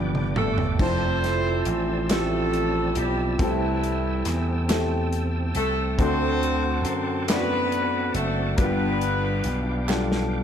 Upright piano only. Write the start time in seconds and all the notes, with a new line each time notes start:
Already playing: G2 G3 B3 D4 F4 G4
0.78 F3 A3 C4 E4 A4
2.09 F3 A3 C4 E4 G4
3.39 C3 A3 C4 E4 G4 A4
4.68 A3 C4 E4 G4 A4
5.98 D3 A3 C4 D4 F#4 A4
7.28 A3 C4 D4 E4 D5
7.36 F#4
8.58 G2 G3 A#3 D4 F4 G4
8.64 B3
9.87 G3 B3 D4 F4 A4